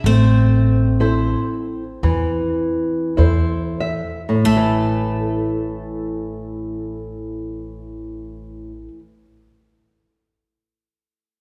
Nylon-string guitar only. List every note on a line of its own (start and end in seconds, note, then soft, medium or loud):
0.06 0.98 A3 medium
1.00 1.83 E4 soft
1.00 1.83 A4 soft
1.00 1.83 C5 soft
2.03 3.15 E3 medium
3.17 4.19 E4 soft
3.17 4.19 A4 soft
3.17 3.77 C5 medium
3.80 4.41 E5 medium
4.29 8.72 A2 medium
4.56 8.99 E3 medium